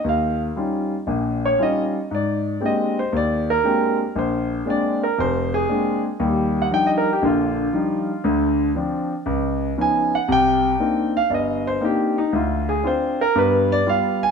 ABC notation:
X:1
M:4/4
L:1/16
Q:"Swing" 1/4=117
K:Eb
V:1 name="Grand piano"
f2 z8 _d2 e2 z2 | d4 e2 c2 d2 B4 z2 | c4 d2 B2 c2 A4 z2 | z3 ^f g e B G =F8 |
z12 a2 ^f2 | g6 f2 [de]2 c2 G2 E2 | F2 A2 c2 B2 =B2 d2 f2 a2 |]
V:2 name="Grand piano"
E,,4 [G,_DEF]2 z2 [B,,,B,,]4 [G,DEF]2 z2 | A,,4 [A,B,CDG]2 z2 E,,4 [A,B,CDG]2 z2 | B,,,4 [A,B,CD]2 z2 F,,,4 [A,B,CD]2 z2 | [E,,G,]4 [F,G,DE]2 z2 [B,,,D,]4 [F,G,DE]2 z2 |
[D,,D,]4 [F,CD]2 z2 _D,,4 [F,_C_DE]2 z2 | [C,,C,]4 [B,CDE]2 z2 G,,,4 [B,CDE]2 z2 | D,,4 [CDF]2 z2 [G,,=B,]4 [G,B,F]2 z2 |]